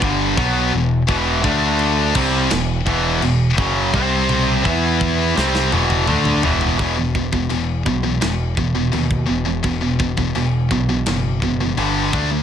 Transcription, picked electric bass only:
0.02 0.35 G1 loud
0.38 0.71 B1 medium
0.73 1.06 E1 medium
1.09 1.42 E1 loud
1.44 2.11 D2 medium
2.15 2.48 C2 loud
2.51 2.84 E1 medium
2.87 3.20 E1 loud
3.22 3.56 E1 medium
3.59 3.91 F#1 medium
3.94 4.61 C2 medium
4.66 5.33 E2 medium
5.37 5.70 C2 medium
5.72 6.05 E1 medium
6.08 6.41 D2 loud
6.44 6.77 E1 medium
6.79 7.47 E1 medium
7.51 7.83 E1 medium
7.86 8.19 B1 medium
8.23 8.89 E1 medium
8.94 9.26 D#2 medium
9.29 9.61 E1 medium
9.64 10.31 E1 medium
10.35 10.68 E1 medium
10.71 11.03 B1 medium
11.07 11.74 F#1 medium
11.78 12.10 G1 medium
12.14 12.43 D2 medium

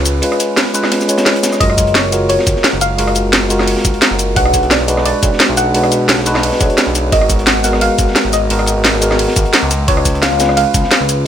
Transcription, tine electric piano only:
0.00 0.22 G#3 loud
0.00 0.22 C#4 medium
0.00 0.23 F4 loud
0.00 0.24 B4 loud
0.22 0.72 G#3 medium
0.22 0.72 C#4 medium
0.22 0.73 F4 medium
0.22 0.73 B4 loud
0.74 1.06 G#3 loud
0.74 1.07 C#4 medium
0.74 1.07 F4 medium
0.74 1.08 B4 loud
1.08 1.58 G#3 medium
1.08 1.58 C#4 medium
1.08 1.59 F4 medium
1.08 1.59 C#5 loud
1.59 2.10 G#3 medium
1.59 2.10 F4 medium
1.59 2.11 F#4 medium
1.59 2.11 A#4 loud
2.11 2.79 G#3 loud
2.11 2.79 F4 medium
2.11 2.79 F#4 medium
2.11 2.80 A#4 loud
2.97 3.48 G#3 loud
2.97 3.48 F4 medium
2.97 3.48 F#4 medium
2.97 3.49 A#4 loud
3.49 4.17 G#3 loud
3.49 4.17 F4 medium
3.49 4.17 F#4 medium
3.49 4.18 A#4 loud
4.35 4.86 G#3 medium
4.35 4.86 D4 medium
4.35 4.86 F#4 medium
4.35 4.87 B4 loud
4.87 5.55 G#3 loud
4.87 5.55 D4 medium
4.87 5.55 F#4 medium
4.87 5.56 B4 loud
5.73 6.24 G#3 medium
5.73 6.24 D4 medium
5.73 6.24 F#4 medium
5.73 6.25 B4 loud
6.26 6.58 G#3 loud
6.26 6.59 D4 medium
6.26 6.59 F#4 medium
6.26 6.59 B4 loud
6.60 7.10 G#3 medium
6.60 7.10 D4 medium
6.60 7.11 F#4 medium
6.60 7.11 C#5 loud
7.11 7.61 G#3 medium
7.11 7.62 B3 medium
7.11 7.62 F#4 medium
7.11 7.63 A#4 loud
7.63 8.30 G#3 loud
7.63 8.31 B3 medium
7.63 8.31 F#4 medium
7.63 8.32 A#4 loud
8.49 8.99 G#3 loud
8.49 9.00 B3 medium
8.49 9.00 F#4 medium
8.49 9.01 A#4 loud
9.01 9.68 G#3 loud
9.01 9.69 B3 medium
9.01 9.69 F#4 medium
9.01 9.70 A#4 loud
9.87 10.37 G#3 loud
9.87 10.38 C#4 medium
9.87 10.38 F4 medium
9.87 10.39 B4 loud
10.38 11.06 G#3 loud
10.38 11.07 C#4 medium
10.38 11.07 F4 medium
10.38 11.07 B4 loud

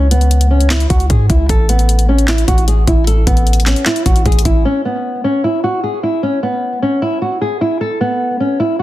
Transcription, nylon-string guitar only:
0.11 0.48 B3 medium
0.51 0.67 C#4 medium
0.70 0.87 E4 medium
0.90 1.07 F#4 medium
1.10 1.27 G#4 medium
1.30 1.46 E4 medium
1.49 1.66 A4 medium
1.69 2.06 B3 medium
2.09 2.25 C#4 medium
2.28 2.45 E4 medium
2.48 2.65 F#4 medium
2.68 2.84 G#4 medium
2.88 3.04 E4 medium
3.07 3.24 A4 medium
3.27 3.64 B3 medium
3.67 3.83 C#4 medium
3.86 4.03 E4 medium
4.06 4.23 F#4 medium
4.26 4.43 G#4 medium
4.45 4.62 E4 medium
4.65 4.82 C#4 medium
4.85 5.22 B3 medium
5.24 5.41 C#4 medium
5.44 5.61 E4 medium
5.64 5.81 F#4 medium
5.84 6.00 G#4 medium
6.03 6.20 E4 medium
6.23 6.40 C#4 medium
6.43 6.80 B3 medium
6.82 6.99 C#4 medium
7.02 7.19 E4 medium
7.22 7.38 F#4 medium
7.41 7.58 G#4 medium
7.61 7.78 E4 medium
7.81 7.98 A4 medium
8.01 8.38 B3 medium
8.40 8.57 C#4 medium
8.60 8.77 E4 medium
8.79 8.83 F#4 medium

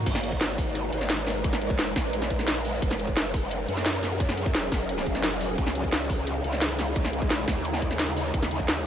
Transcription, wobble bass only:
0.06 0.39 G#1 loud
0.41 0.91 G#1 loud
0.93 1.77 G#1 loud
1.79 1.95 F#1 loud
1.96 2.81 A#1 loud
2.82 3.15 F#1 loud
3.17 3.67 F#1 loud
3.68 4.53 F#2 loud
4.55 4.70 E1 loud
4.72 5.05 F#1 loud
5.06 5.57 F#1 loud
5.58 5.91 C#2 loud
5.93 6.43 C#2 loud
6.44 7.29 C#2 loud
7.30 7.46 B1 loud
7.48 8.33 D#2 medium
8.34 8.67 D#2 loud
8.68 8.87 D#2 loud

